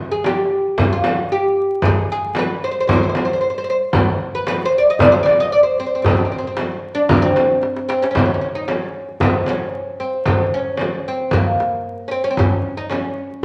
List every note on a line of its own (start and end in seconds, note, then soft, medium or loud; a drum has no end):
0.01 darbuka ka soft
0.12 0.25 G#4 medium
0.24 0.92 G4 medium
0.24 darbuka tek medium
0.24 frame drum medium
0.78 frame drum medium
0.78 darbuka dum medium
0.93 1.28 F4 medium
1.04 darbuka tek medium
1.04 frame drum medium
1.32 1.85 G4 medium
1.44 darbuka ka soft
1.57 darbuka ka soft
1.82 2.09 G#4 medium
1.82 frame drum medium
1.82 darbuka dum loud
2.11 2.35 G#4 medium
2.11 darbuka ka soft
2.35 2.64 B4 medium
2.35 darbuka tek medium
2.35 frame drum medium
2.64 2.70 C5 medium
2.71 2.77 C5 medium
2.80 2.86 C5 medium
2.87 2.93 C5 medium
2.87 darbuka dum medium
2.87 frame drum medium
2.96 3.01 C5 medium
3.03 3.08 C5 medium
3.09 3.15 C5 medium
3.15 3.23 C5 medium
3.15 darbuka tek medium
3.15 frame drum medium
3.25 3.31 C5 medium
3.33 3.38 C5 medium
3.41 3.46 C5 medium
3.50 3.54 C5 medium
3.54 3.62 C5 medium
3.54 darbuka ka soft
3.64 3.69 C5 medium
3.68 3.76 C5 medium
3.68 darbuka ka soft
3.93 frame drum medium
3.93 darbuka dum medium
4.21 darbuka ka soft
4.35 4.47 B4 medium
4.47 4.65 B4 medium
4.47 darbuka tek medium
4.47 frame drum medium
4.65 4.78 C5 medium
4.78 4.90 D5 medium
4.90 5.01 D#5 medium
4.99 5.12 D5 medium
4.99 darbuka dum medium
4.99 frame drum loud
5.12 5.23 C5 medium
5.23 5.39 D5 medium
5.23 darbuka tek medium
5.27 frame drum medium
5.40 5.51 D#5 loud
5.52 5.63 D5 medium
5.63 5.79 C5 medium
5.63 darbuka ka soft
5.79 5.85 C4 medium
5.79 darbuka ka soft
5.86 5.93 C4 medium
5.95 6.01 C4 medium
6.02 6.08 C4 soft
6.02 darbuka dum medium
6.02 frame drum medium
6.10 6.16 C4 soft
6.17 6.23 C4 soft
6.17 darbuka ka soft
6.25 6.30 C4 soft
6.31 6.37 C4 soft
6.31 darbuka ka soft
6.38 6.46 C4 medium
6.47 6.54 C4 medium
6.57 darbuka tek medium
6.57 frame drum medium
6.71 darbuka ka soft
6.95 7.16 D4 loud
6.95 darbuka ka soft
7.09 frame drum medium
7.09 darbuka dum medium
7.17 7.22 D4 medium
7.22 7.87 C4 medium
7.36 darbuka tek medium
7.36 frame drum medium
7.63 darbuka tek medium
7.76 darbuka ka medium
7.89 8.03 C4 medium
7.89 darbuka tek medium
8.02 8.10 C#4 medium
8.02 darbuka ka medium
8.11 8.17 C#4 medium
8.15 8.24 C#4 medium
8.15 frame drum medium
8.15 darbuka dum medium
8.26 8.33 C#4 medium
8.26 darbuka ka soft
8.34 8.40 C#4 medium
8.41 8.49 C#4 medium
8.55 8.69 D#4 medium
8.68 9.23 C#4 medium
8.68 darbuka tek medium
8.68 frame drum medium
8.83 darbuka ka soft
9.09 darbuka ka soft
9.20 9.47 C4 medium
9.20 darbuka dum medium
9.20 frame drum medium
9.46 10.03 C#4 medium
9.46 darbuka tek medium
9.46 frame drum medium
10.00 10.25 C4 medium
10.00 darbuka ka soft
10.14 darbuka ka soft
10.26 10.54 C4 medium
10.26 frame drum medium
10.26 darbuka dum medium
10.41 darbuka ka soft
10.54 11.08 C#4 medium
10.77 darbuka tek medium
10.77 frame drum medium
10.94 darbuka ka soft
11.08 11.34 C4 medium
11.20 darbuka ka soft
11.31 12.11 A#3 medium
11.31 frame drum medium
11.31 darbuka dum medium
11.60 darbuka tek medium
12.08 12.24 C4 medium
12.08 12.11 C#4 medium
12.13 darbuka ka soft
12.24 12.30 C#4 medium
12.24 darbuka ka soft
12.31 12.38 C4 medium
12.37 12.77 C#4 medium
12.37 frame drum medium
12.37 darbuka dum loud
12.77 12.90 D#4 medium
12.90 13.45 C#4 medium
12.90 darbuka tek medium
12.90 frame drum medium
13.05 darbuka ka soft
13.31 darbuka ka soft